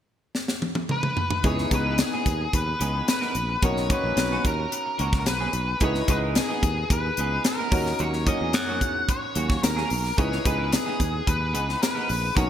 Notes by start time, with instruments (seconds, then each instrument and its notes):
0.35 snare
0.48 snare
0.62 high tom
0.75 high tom
0.89 lead electric guitar B4, mid tom
1.03 mid tom
1.17 floor tom
1.31 floor tom
1.44 fingered electric bass C#2, clean electric guitar E3 B3 D#4 G#4, grand piano B3 D#4 E4 G#4, lead electric guitar C#5, kick, closed hi-hat
1.58 muted clean electric guitar stroke, snare
1.71 fingered electric bass C#2, clean electric guitar E3 B3 D#4 G#4, grand piano B3 D#4 E4 G#4, lead electric guitar B4, kick, closed hi-hat
1.87 clean electric guitar E3 B3 D#4 A#4
1.98 lead electric guitar G#4, snare, closed hi-hat
2.14 clean electric guitar E3 B3 D#4 G#4
2.26 fingered electric bass D#2, muted clean electric guitar stroke, kick, closed hi-hat
2.41 muted clean electric guitar stroke
2.53 fingered electric bass D#2, lead electric guitar B4, muted clean electric guitar stroke, kick, closed hi-hat
2.66 muted clean electric guitar stroke
2.79 fingered electric bass C#2, clean electric guitar E3 B3 D#4 G#4, closed hi-hat
2.93 clean electric guitar E3 B3 D#4 G#4
3.07 lead electric guitar B4, muted clean electric guitar stroke, snare, closed hi-hat
3.21 clean electric guitar E3 B3 D#4 A#4, snare
3.35 fingered electric bass A#1, muted clean electric guitar stroke, closed hi-hat
3.49 muted clean electric guitar stroke
3.62 fingered electric bass B1, clean electric guitar D#3 A#3 C#4 F#4, grand piano C#4 D#4 F#4 A#4, lead electric guitar C#5, kick, closed hi-hat
3.77 muted clean electric guitar stroke, snare
3.89 clean electric guitar D#3 A#3 C#4 F#4, grand piano C#4 D#4 F#4 C#5, lead electric guitar B4, kick, closed hi-hat
4.04 fingered electric bass A#1, clean electric guitar D#3 A#3 C#4 G#4
4.17 fingered electric bass B1, muted clean electric guitar stroke, snare, closed hi-hat
4.32 clean electric guitar D#3 A#3 C#4 F#4
4.45 fingered electric bass D#2, lead electric guitar A#4, muted clean electric guitar stroke, kick, closed hi-hat
4.60 muted clean electric guitar stroke
4.72 muted clean electric guitar stroke, closed hi-hat
4.86 muted clean electric guitar stroke
4.98 fingered electric bass C#2, clean electric guitar D#3 A#3 C#4 F#4, closed hi-hat
5.12 clean electric guitar D#3 A#3 C#4 F#4, kick, snare
5.19 lead electric guitar A#4
5.26 fingered electric bass B1, lead electric guitar B4, snare, closed hi-hat
5.41 clean electric guitar D#3 A#3 C#4 G#4
5.53 fingered electric bass B1, muted clean electric guitar stroke, closed hi-hat
5.68 muted clean electric guitar stroke
5.80 fingered electric bass C#2, clean electric guitar E3 B3 D#4 G#4, grand piano D#4 E4 G#4 B4, lead electric guitar C#5, kick, closed hi-hat
5.95 muted clean electric guitar stroke, snare
6.08 fingered electric bass C#2, clean electric guitar E3 B3 D#4 G#4, grand piano D#4 E4 G#4 B4, lead electric guitar B4, kick, closed hi-hat
6.23 clean electric guitar E3 B3 D#4 A#4
6.35 lead electric guitar G#4, muted clean electric guitar stroke, snare, closed hi-hat
6.49 clean electric guitar E3 B3 D#4 G#4
6.63 fingered electric bass D#2, kick, closed hi-hat
6.78 muted clean electric guitar stroke
6.90 fingered electric bass D#2, lead electric guitar B4, muted clean electric guitar stroke, kick, closed hi-hat
7.05 muted clean electric guitar stroke
7.17 fingered electric bass C#2, clean electric guitar E3 B3 D#4 G#4, closed hi-hat
7.32 clean electric guitar E3 B3 D#4 G#4
7.44 lead electric guitar A#4, muted clean electric guitar stroke, snare, closed hi-hat
7.59 clean electric guitar E3 B3 D#4 A#4
7.71 fingered electric bass D#2, grand piano C#4 D#4 F#4 A#4, muted clean electric guitar stroke, kick, open hi-hat
7.86 muted clean electric guitar stroke, snare
7.99 fingered electric bass D#2, clean electric guitar F#3 A#3 C#4 F#4, lead electric guitar C#5, closed hi-hat
8.13 muted clean electric guitar stroke, snare
8.26 clean electric guitar F#3 A#3 C#4 F#4, grand piano C#4 D#4 F#4 A#4, lead electric guitar D#5, kick, closed hi-hat
8.41 fingered electric bass E2, clean electric guitar F#3 A#3 C#4 G#4
8.53 fingered electric bass F#2, lead electric guitar F#5, snare, closed hi-hat
8.68 clean electric guitar F#3 A#3 C#4 F#4
8.81 fingered electric bass E2, muted clean electric guitar stroke, kick, closed hi-hat
8.95 muted clean electric guitar stroke
9.09 lead electric guitar C#5, muted clean electric guitar stroke, kick, closed hi-hat
9.23 muted clean electric guitar stroke
9.35 fingered electric bass D#2, clean electric guitar F#3 A#3 C#4 F#4, closed hi-hat
9.49 clean electric guitar F#3 A#3 C#4 F#4, kick, snare
9.63 fingered electric bass D#2, lead electric guitar A#4, muted clean electric guitar stroke, snare, closed hi-hat
9.76 clean electric guitar F#3 A#3 C#4 G#4, snare
9.90 fingered electric bass B1, muted clean electric guitar stroke, open hi-hat
10.04 muted clean electric guitar stroke, snare
10.17 fingered electric bass C#2, clean electric guitar E3 B3 D#4 G#4, grand piano D#4 E4 G#4 B4, lead electric guitar C#5, kick, closed hi-hat
10.31 muted clean electric guitar stroke, snare
10.45 fingered electric bass C#2, clean electric guitar E3 B3 D#4 G#4, grand piano D#4 E4 G#4 B4, lead electric guitar B4, kick, closed hi-hat
10.59 clean electric guitar E3 B3 D#4 A#4
10.72 lead electric guitar G#4, muted clean electric guitar stroke, snare, closed hi-hat
10.86 clean electric guitar E3 B3 D#4 G#4
11.00 fingered electric bass D#2, muted clean electric guitar stroke, kick, closed hi-hat
11.14 muted clean electric guitar stroke
11.27 fingered electric bass D#2, lead electric guitar B4, muted clean electric guitar stroke, kick, closed hi-hat
11.41 muted clean electric guitar stroke
11.54 fingered electric bass C#2, clean electric guitar E3 B3 D#4 G#4, closed hi-hat
11.68 clean electric guitar E3 B3 D#4 G#4, snare
11.81 lead electric guitar B4, muted clean electric guitar stroke, snare, closed hi-hat
11.95 clean electric guitar E3 B3 D#4 A#4
12.09 fingered electric bass A#1, muted clean electric guitar stroke, open hi-hat
12.22 muted clean electric guitar stroke
12.35 fingered electric bass B1, clean electric guitar D#3 A#3 C#4 F#4, grand piano C#4 D#4 F#4 A#4, lead electric guitar C#5, kick, closed hi-hat